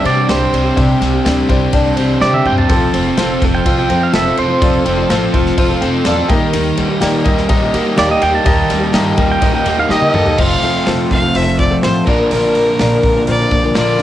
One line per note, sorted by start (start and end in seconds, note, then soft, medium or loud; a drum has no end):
0.00 0.77 G3 medium
0.00 0.16 G3 medium
0.00 2.66 C4 medium
0.00 0.22 D4 medium
0.00 1.01 D4 medium
0.00 2.66 D4 medium
0.00 0.22 G4 medium
0.00 0.29 G4 medium
0.00 2.67 G4 medium
0.00 0.22 C5 medium
0.04 0.21 C3 medium
0.04 0.17 C4 medium
0.04 0.16 D4 medium
0.04 0.15 G4 medium
0.04 0.29 D5 loud
0.04 ride medium
0.16 0.27 C4 soft
0.16 0.27 D4 soft
0.16 0.28 G4 soft
0.28 0.45 C2 medium
0.28 0.40 C3 medium
0.28 0.41 G3 medium
0.28 0.41 C4 medium
0.28 0.41 D4 medium
0.28 0.70 D4 medium
0.28 0.39 G4 medium
0.28 0.70 G4 medium
0.28 0.70 C5 medium
0.28 0.76 C5 medium
0.28 snare loud
0.28 ride medium
0.40 0.65 C4 soft
0.40 0.65 D4 soft
0.40 0.63 G4 medium
0.53 0.69 C2 medium
0.53 1.25 C4 medium
0.53 ride medium
0.64 0.77 C4 soft
0.64 0.77 D4 soft
0.64 0.77 G4 soft
0.76 0.94 C2 medium
0.76 1.13 C3 medium
0.76 1.14 G3 medium
0.76 1.14 C4 medium
0.76 1.18 D4 medium
0.76 1.13 D4 medium
0.76 1.18 G4 medium
0.76 1.12 G4 medium
0.76 1.18 C5 medium
0.76 kick loud
0.76 ride medium
1.01 1.17 C2 medium
1.01 1.48 G3 medium
1.01 snare soft
1.01 ride medium
1.14 1.26 C4 soft
1.14 1.26 D4 soft
1.14 1.26 G4 medium
1.25 1.42 D2 medium
1.25 1.49 C3 medium
1.25 1.48 G3 medium
1.25 1.49 C4 medium
1.25 1.46 D4 medium
1.25 1.50 D4 medium
1.25 1.46 G4 medium
1.25 1.50 G4 medium
1.25 1.46 D5 medium
1.25 snare loud
1.25 ride medium
1.49 1.66 C2 medium
1.49 1.86 G3 medium
1.49 1.86 C4 medium
1.49 1.70 D4 medium
1.49 1.85 D4 medium
1.49 1.70 G4 medium
1.49 1.83 G4 medium
1.49 1.70 C5 medium
1.49 kick medium
1.49 ride medium
1.73 1.90 C2 medium
1.73 2.70 D4 medium
1.73 2.14 D4 medium
1.73 2.14 G4 medium
1.73 2.15 D5 medium
1.73 kick medium
1.73 ride medium
1.85 1.96 C4 soft
1.85 1.97 D4 medium
1.85 1.97 G4 soft
1.97 2.13 C2 medium
1.97 2.20 G3 medium
1.97 2.20 C4 medium
1.97 2.21 D4 medium
1.97 2.20 G4 medium
1.97 ride medium
2.20 2.33 C3 medium
2.20 2.37 C3 medium
2.20 2.33 G3 medium
2.20 2.33 C4 medium
2.20 2.63 D4 medium
2.20 2.33 D4 medium
2.20 2.32 G4 medium
2.20 2.63 G4 medium
2.20 2.63 C5 medium
2.20 2.33 D5 medium
2.20 snare medium
2.33 2.58 C4 soft
2.33 2.57 D4 soft
2.33 2.56 G4 soft
2.33 2.45 E5 medium
2.33 high tom medium
2.46 2.62 G2 medium
2.46 2.93 C4 medium
2.46 2.58 G5 medium
2.46 mid tom medium
2.58 2.69 C4 soft
2.58 2.70 D4 soft
2.58 2.70 G4 soft
2.58 3.51 A5 medium
2.58 floor tom medium
2.69 2.86 F1 medium
2.69 3.06 F3 medium
2.69 6.26 A3 medium
2.69 6.26 C4 medium
2.69 3.06 C4 medium
2.69 6.26 F4 medium
2.69 3.11 F4 medium
2.69 3.06 F4 medium
2.69 6.26 A4 medium
2.69 3.10 A4 medium
2.69 3.05 A4 medium
2.69 3.10 C5 loud
2.69 kick loud
2.69 ride medium
2.93 3.09 F1 medium
2.93 3.17 C4 medium
2.93 ride medium
3.07 3.18 C4 soft
3.07 3.18 F4 soft
3.07 3.18 A4 soft
3.17 3.34 F1 medium
3.17 3.42 F3 medium
3.17 3.42 C4 medium
3.17 3.38 F4 medium
3.17 3.43 F4 medium
3.17 3.38 A4 medium
3.17 3.43 A4 medium
3.17 3.38 C5 medium
3.17 snare loud
3.17 ride medium
3.42 3.58 F1 medium
3.42 3.78 F3 medium
3.42 3.78 C4 medium
3.42 3.62 F4 medium
3.42 3.77 F4 medium
3.42 3.62 A4 medium
3.42 3.77 A4 medium
3.42 3.62 C5 medium
3.42 kick medium
3.42 ride medium
3.55 3.78 G5 medium
3.65 3.82 C2 medium
3.65 4.07 F4 medium
3.65 4.86 F4 medium
3.65 4.07 A4 medium
3.65 4.07 C5 medium
3.65 kick medium
3.65 ride medium
3.78 3.88 C4 soft
3.78 3.89 F4 soft
3.78 3.90 A4 soft
3.78 4.02 G5 medium
3.88 4.06 F2 medium
3.88 4.12 F3 medium
3.88 4.13 C4 medium
3.88 4.13 F4 medium
3.88 4.13 A4 medium
3.88 ride medium
4.03 4.14 F5 medium
4.13 4.30 F1 medium
4.13 4.26 F3 medium
4.13 4.25 C4 medium
4.13 4.54 F4 medium
4.13 4.24 F4 medium
4.13 4.54 A4 medium
4.13 4.24 A4 medium
4.13 4.55 C5 medium
4.13 4.38 E5 medium
4.13 snare loud
4.13 ride medium
4.25 4.49 C4 soft
4.25 4.48 F4 soft
4.25 4.47 A4 medium
4.37 4.54 F1 medium
4.37 4.84 C4 medium
4.37 5.32 C5 loud
4.37 ride medium
4.48 4.60 C4 soft
4.48 4.60 F4 medium
4.48 4.61 A4 soft
4.60 4.78 F1 medium
4.60 4.97 F3 medium
4.60 4.98 C4 medium
4.60 5.03 F4 medium
4.60 4.97 F4 medium
4.60 5.03 A4 medium
4.60 4.96 A4 medium
4.60 5.03 D5 medium
4.60 kick loud
4.60 ride medium
4.86 5.02 F1 medium
4.86 5.09 C4 medium
4.86 ride medium
4.97 5.09 C4 soft
4.97 5.10 F4 soft
4.97 5.09 A4 medium
5.10 5.26 A1 medium
5.10 5.32 F3 medium
5.10 5.33 C4 medium
5.10 5.30 F4 medium
5.10 5.34 F4 medium
5.10 5.31 A4 medium
5.10 5.35 A4 medium
5.10 5.30 C5 medium
5.10 snare loud
5.10 ride medium
5.33 5.50 F1 medium
5.33 5.70 F3 medium
5.33 5.70 C4 medium
5.33 5.54 F4 medium
5.33 5.70 F4 medium
5.33 5.54 A4 medium
5.33 5.68 A4 medium
5.33 5.54 C5 medium
5.33 kick medium
5.33 ride medium
5.46 snare soft
5.57 5.74 F1 medium
5.57 5.99 F4 medium
5.57 6.30 F4 medium
5.57 5.99 A4 medium
5.57 5.99 C5 medium
5.57 kick medium
5.57 ride medium
5.69 5.80 C4 soft
5.69 5.81 F4 soft
5.69 5.82 A4 medium
5.81 5.98 F1 medium
5.81 6.04 F3 medium
5.81 6.04 C4 medium
5.81 6.05 F4 medium
5.81 6.05 A4 medium
5.81 6.04 G5 medium
5.81 ride medium
6.05 6.22 E2 medium
6.05 6.18 F3 medium
6.05 6.17 C4 medium
6.05 6.30 F4 medium
6.05 6.16 F4 medium
6.05 6.30 A4 medium
6.05 6.15 A4 medium
6.05 6.30 D5 loud
6.05 6.28 F5 medium
6.05 snare loud
6.05 ride medium
6.16 6.29 C4 medium
6.16 6.29 F4 soft
6.16 6.29 A4 medium
6.28 6.46 D#2 medium
6.28 6.89 D#3 medium
6.28 6.90 G3 medium
6.28 6.89 A#3 loud
6.28 10.35 A#3 medium
6.28 6.88 D#4 medium
6.28 10.35 D#4 medium
6.28 6.91 G4 loud
6.28 6.87 G4 medium
6.28 10.35 G4 medium
6.28 6.91 A#4 medium
6.28 10.35 A#4 medium
6.28 6.52 D#5 loud
6.28 kick loud
6.28 ride medium
6.53 6.70 D#2 loud
6.53 7.74 D#3 medium
6.53 ride loud
6.77 6.94 D#2 medium
6.77 7.24 G3 medium
6.77 ride medium
6.88 6.99 A#3 soft
6.88 7.00 D#4 soft
6.88 7.00 G4 medium
7.00 7.18 D#2 medium
7.00 7.25 D#3 medium
7.00 7.24 G3 medium
7.00 7.24 A#3 medium
7.00 7.25 D#4 medium
7.00 7.22 G4 medium
7.00 7.26 G4 loud
7.00 7.22 A#4 medium
7.00 7.22 D5 loud
7.00 snare loud
7.00 ride medium
7.24 7.42 D#2 medium
7.24 7.62 G3 medium
7.24 7.62 A#3 medium
7.24 7.61 D#4 medium
7.24 7.46 G4 medium
7.24 7.60 G4 medium
7.24 7.46 A#4 medium
7.24 7.46 D#5 medium
7.24 kick medium
7.24 ride medium
7.38 snare soft
7.49 7.66 A#1 medium
7.49 8.70 D#4 medium
7.49 7.91 G4 medium
7.49 7.91 A#4 medium
7.49 7.91 D#5 loud
7.49 kick medium
7.49 ride medium
7.61 7.72 A#3 soft
7.61 7.73 D#4 medium
7.61 7.73 G4 medium
7.72 7.90 D#3 medium
7.72 7.85 G3 medium
7.72 7.85 A#3 medium
7.72 7.84 D#4 medium
7.72 7.83 G4 medium
7.72 ride medium
7.84 7.96 A#3 soft
7.84 7.96 D#4 soft
7.84 7.96 G4 soft
7.96 8.14 D#2 medium
7.96 8.09 D#3 medium
7.96 8.10 G3 medium
7.96 8.09 A#3 medium
7.96 8.08 D#4 medium
7.96 8.39 G4 medium
7.96 8.07 G4 medium
7.96 8.39 A#4 medium
7.96 8.10 D5 loud
7.96 8.39 F5 medium
7.96 snare loud
7.96 ride medium
8.08 8.33 A#3 soft
8.08 8.31 D#4 medium
8.08 8.30 G4 medium
8.08 8.22 D#5 medium
8.22 8.38 D#2 medium
8.22 8.92 A#3 medium
8.22 8.34 G5 medium
8.22 ride medium
8.31 8.44 A#3 soft
8.31 8.44 D#4 soft
8.31 8.45 G4 soft
8.31 9.28 A5 medium
8.44 8.62 D#2 medium
8.44 8.81 D#3 medium
8.44 8.81 G3 medium
8.44 8.81 A#3 medium
8.44 8.81 D#4 medium
8.44 8.87 G4 medium
8.44 8.79 G4 medium
8.44 8.87 A#4 medium
8.44 8.87 D#5 loud
8.44 kick loud
8.44 ride medium
8.69 8.86 D#2 medium
8.69 9.16 G3 medium
8.69 snare soft
8.69 ride medium
8.80 8.91 A#3 soft
8.80 8.91 D#4 soft
8.80 8.92 G4 soft
8.91 9.10 G2 medium
8.91 9.17 D#3 medium
8.91 9.15 G3 medium
8.91 9.16 A#3 medium
8.91 9.17 D#4 loud
8.91 9.17 G4 medium
8.91 9.15 G4 medium
8.91 9.15 A#4 medium
8.91 9.15 D#5 medium
8.91 snare loud
8.91 ride medium
9.16 9.34 D#2 medium
9.16 9.54 G3 medium
9.16 9.53 A#3 medium
9.16 9.52 D#4 medium
9.16 9.38 G4 medium
9.16 9.51 G4 medium
9.16 9.39 A#4 medium
9.16 9.39 D#5 medium
9.16 kick medium
9.16 ride medium
9.31 9.54 G5 medium
9.41 9.58 D#2 medium
9.41 10.38 D#4 medium
9.41 9.83 G4 medium
9.41 9.83 A#4 medium
9.41 9.83 D#5 medium
9.41 kick medium
9.41 ride medium
9.52 9.65 A#3 soft
9.52 9.66 D#4 soft
9.52 9.65 G4 medium
9.52 9.78 G5 medium
9.65 9.82 D#2 medium
9.65 9.78 G3 medium
9.65 9.78 A#3 medium
9.65 9.77 D#4 medium
9.65 9.76 G4 medium
9.65 ride medium
9.77 9.88 A#3 soft
9.77 9.88 D#4 soft
9.77 9.89 G4 soft
9.77 9.91 F5 medium
9.88 10.01 D#3 medium
9.88 10.06 D#3 medium
9.88 10.02 G3 medium
9.88 10.01 A#3 medium
9.88 10.00 D#4 medium
9.88 10.31 G4 medium
9.88 9.99 G4 medium
9.88 10.31 A#4 medium
9.88 10.31 D#5 medium
9.88 10.40 D#5 medium
9.88 10.14 D#5 medium
9.88 snare medium
10.00 10.27 A#3 soft
10.00 10.26 D#4 soft
10.00 10.24 G4 medium
10.00 high tom medium
10.14 10.30 E2 medium
10.14 10.38 A#3 medium
10.14 10.38 A4 loud
10.14 mid tom medium
10.26 10.38 A#3 soft
10.26 10.38 D#4 soft
10.26 10.38 G4 medium
10.26 floor tom medium
10.37 10.57 F1 medium
10.37 10.61 F3 medium
10.37 12.05 A3 medium
10.37 12.06 A3 medium
10.37 12.05 C4 medium
10.37 10.62 C4 medium
10.37 12.05 F4 medium
10.37 10.80 F4 medium
10.37 10.62 F4 medium
10.37 12.05 A4 medium
10.37 10.80 A4 medium
10.37 10.63 A4 medium
10.37 10.80 C5 medium
10.37 10.87 F5 loud
10.37 kick loud
10.37 crash loud
10.62 10.81 F1 medium
10.62 10.86 F3 medium
10.62 10.86 C4 medium
10.62 10.87 F4 medium
10.62 10.87 A4 medium
10.62 open hi-hat medium
10.87 11.05 F1 medium
10.87 11.09 F3 medium
10.87 11.10 C4 medium
10.87 11.28 F4 medium
10.87 11.11 F4 medium
10.87 11.28 A4 medium
10.87 11.12 A4 medium
10.87 11.28 C5 medium
10.87 snare loud
10.87 open hi-hat medium
11.10 11.29 F1 medium
11.10 11.22 F3 medium
11.10 11.23 C4 medium
11.10 11.22 F4 medium
11.10 11.21 A4 medium
11.10 11.37 F5 medium
11.10 kick medium
11.10 open hi-hat soft
11.22 11.47 C4 soft
11.22 11.46 F4 soft
11.22 11.45 A4 soft
11.35 11.71 F1 medium
11.35 11.76 F4 medium
11.35 11.76 A4 medium
11.35 11.76 C5 medium
11.35 11.58 E5 loud
11.35 open hi-hat medium
11.46 11.58 C4 soft
11.46 11.58 F4 soft
11.46 11.59 A4 soft
11.58 11.71 F3 medium
11.58 11.71 C4 medium
11.58 11.71 F4 medium
11.58 11.70 A4 medium
11.58 11.81 D5 medium
11.58 kick medium
11.58 open hi-hat medium
11.71 12.06 F3 medium
11.71 12.07 C4 medium
11.71 12.07 F4 medium
11.71 12.07 A4 medium
11.83 12.02 A1 medium
11.83 12.06 F4 medium
11.83 12.07 A4 medium
11.83 12.05 C5 medium
11.83 12.07 C5 medium
11.83 snare loud
11.83 open hi-hat medium
12.06 12.25 A#1 medium
12.06 13.73 A#2 medium
12.06 13.74 D3 medium
12.06 12.19 F3 medium
12.06 14.02 A#3 medium
12.06 12.19 A#3 medium
12.06 14.02 D4 medium
12.06 12.19 D4 medium
12.06 12.69 F4 medium
12.06 14.02 F4 medium
12.06 12.29 A#4 medium
12.06 14.02 A#4 medium
12.06 12.69 A#4 medium
12.06 12.18 A#4 medium
12.06 12.69 D5 medium
12.06 kick loud
12.06 open hi-hat medium
12.10 13.75 F4 medium
12.19 12.31 F3 soft
12.19 12.31 A#3 soft
12.19 12.32 D4 soft
12.19 12.31 A#4 medium
12.30 12.68 A#1 medium
12.30 12.55 A#2 medium
12.30 12.56 D3 medium
12.30 12.55 F3 medium
12.30 12.56 A#3 medium
12.30 12.56 D4 medium
12.30 13.23 A#4 loud
12.30 12.56 A#4 medium
12.30 open hi-hat medium
12.55 12.80 F3 medium
12.55 12.80 A#3 medium
12.55 12.80 D4 medium
12.55 12.80 A#4 medium
12.55 open hi-hat medium
12.79 12.98 A#1 medium
12.79 13.04 A#2 medium
12.79 13.04 D3 medium
12.79 13.02 F3 medium
12.79 13.03 A#3 medium
12.79 13.03 D4 medium
12.79 13.20 F4 medium
12.79 13.20 A#4 medium
12.79 13.04 A#4 medium
12.79 13.20 D5 medium
12.79 snare loud
12.79 open hi-hat medium
13.03 13.21 A#1 medium
13.03 13.15 F3 medium
13.03 13.16 A#3 medium
13.03 13.16 D4 medium
13.03 13.15 A#4 medium
13.03 kick medium
13.03 open hi-hat medium
13.16 13.41 F3 soft
13.16 13.40 A#3 soft
13.16 13.40 D4 soft
13.16 13.38 A#4 medium
13.27 13.46 A#1 medium
13.27 13.68 F4 medium
13.27 13.68 A#4 medium
13.27 13.68 C5 medium
13.27 13.73 D5 medium
13.27 open hi-hat medium
13.39 13.50 F3 soft
13.39 13.51 A#3 soft
13.39 13.51 D4 soft
13.39 13.51 A#4 soft
13.51 13.70 A#1 medium
13.51 13.63 F3 medium
13.51 13.63 A#3 medium
13.51 13.63 D4 medium
13.51 13.63 A#4 medium
13.51 kick medium
13.51 open hi-hat soft
13.64 14.00 A#2 medium
13.64 14.00 D3 medium
13.64 13.98 F3 medium
13.64 13.99 A#3 medium
13.64 13.99 D4 medium
13.64 13.99 A#4 medium
13.74 13.94 A#1 medium
13.74 13.97 A#2 medium
13.74 13.98 D3 medium
13.74 13.98 A#3 medium
13.74 13.99 D4 medium
13.74 14.02 F4 medium
13.74 13.99 F4 medium
13.74 14.02 A#4 medium
13.74 14.02 D5 medium
13.74 snare loud
13.74 open hi-hat medium
13.99 14.02 F3 medium